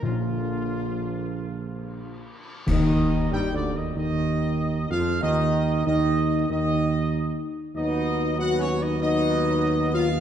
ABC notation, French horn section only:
X:1
M:4/4
L:1/8
Q:1/4=94
K:Bbmix
V:1 name="French horn section"
F,6- F, z | E2 (3G D E E3 F | E2 E2 E3 z | ^D2 (3^F _D ^D D3 =F |]